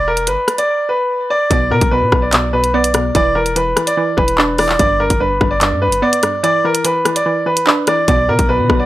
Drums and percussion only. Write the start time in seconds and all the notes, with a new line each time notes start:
0.17 closed hi-hat
0.27 closed hi-hat
0.48 cross-stick, closed hi-hat
0.58 closed hi-hat
1.51 kick, closed hi-hat
1.81 kick, closed hi-hat
2.12 kick, cross-stick
2.33 clap, closed hi-hat
2.64 closed hi-hat
2.84 closed hi-hat
2.94 cross-stick, closed hi-hat
3.15 kick, closed hi-hat
3.46 closed hi-hat
3.56 closed hi-hat
3.77 cross-stick, closed hi-hat
3.87 closed hi-hat
4.18 kick
4.28 closed hi-hat
4.38 clap
4.58 cross-stick, open hi-hat
4.69 clap
4.79 kick, closed hi-hat
5.10 kick, closed hi-hat
5.41 kick, cross-stick
5.61 clap, closed hi-hat
5.92 closed hi-hat
6.13 closed hi-hat
6.23 cross-stick, closed hi-hat
6.44 closed hi-hat
6.75 closed hi-hat
6.85 closed hi-hat
7.05 cross-stick, closed hi-hat
7.16 closed hi-hat
7.57 closed hi-hat
7.67 clap
7.87 cross-stick, closed hi-hat
8.08 kick, closed hi-hat
8.39 kick, closed hi-hat
8.70 kick, cross-stick